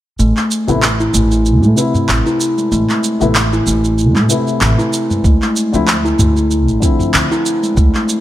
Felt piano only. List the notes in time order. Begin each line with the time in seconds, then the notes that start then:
0.67 C3 A3 B3 E4
1.75 C3 E4 B4
3.20 C3 A3 B3 E4
4.28 C3 A3 B4
4.32 E4
5.73 D3 F3 C4 E4
6.80 D3 F3 C4 E4